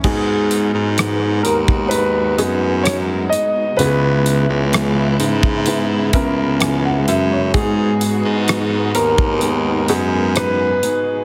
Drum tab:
CC |x---------------|----------------|----------------|
HH |--x-x-x-x-x-x-x-|x-x-x-x-x-x-x-x-|x-x-x-x-x-x-x-x-|
SD |----r-------r---|----r-------r---|----r-------r---|
BD |o------o--------|-------o--o-----|o------o--------|